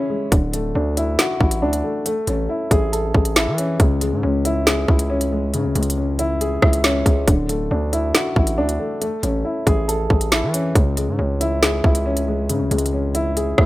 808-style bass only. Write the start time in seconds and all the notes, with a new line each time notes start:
0.32 D1
0.75 D2
1.41 A1
1.62 D2
2.28 A1
2.71 A1
3.14 A1
3.47 E3
3.80 C#2
4.12 G#2
4.23 C#2
4.88 C#2
5.54 G#2
5.65 C#2
5.75 C#2
6.62 C#2
7.06 C#2
7.28 D1
7.71 D2
8.36 A1
8.58 D2
9.23 A1
9.67 A1
10.10 A1
10.43 E3
10.75 C#2
11.08 G#2
11.19 C#2
11.84 C#2
12.49 G#2
12.60 C#2
12.71 C#2
13.58 C#2